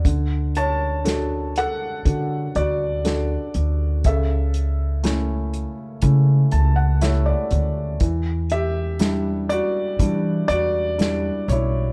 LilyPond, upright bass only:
\new Staff \with { instrumentName = "Upright bass" } { \clef bass \time 4/4 \key d \major \tempo 4 = 60 d,2 d8 d,4 d,8 | cis,2 cis8 cis,4 d,8 | e,2 e8 e,4 b,,8 | }